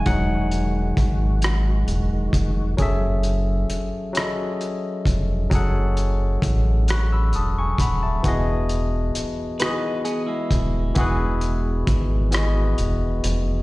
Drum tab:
HH |xxxxxx|xxxxxx|xxxxxx|xxxxxx|
SD |---r--|---r--|---r--|---r--|
BD |o-o--o|o----o|o-o--o|o----o|

HH |xxxxxx|
SD |---r--|
BD |o-o---|